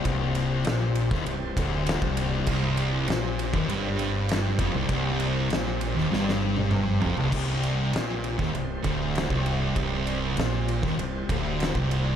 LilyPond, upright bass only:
\new Staff \with { instrumentName = "Upright bass" } { \clef bass \time 4/4 \key c \minor \tempo 4 = 99 c,,4 bes,,8. ees,,16 c,,8 d,,8. c,,8. | c,,4 bes,,8. ees,,16 g,,4. f,,16 c,,16 | c,,4 bes,,8. ees,,16 g,,4. f,,16 c,,16 | c,,4 bes,,8. ees,,16 c,,8 d,,8. c,,8. |
c,,4 bes,,8. ees,,16 c,,8 d,,8. c,,8. | }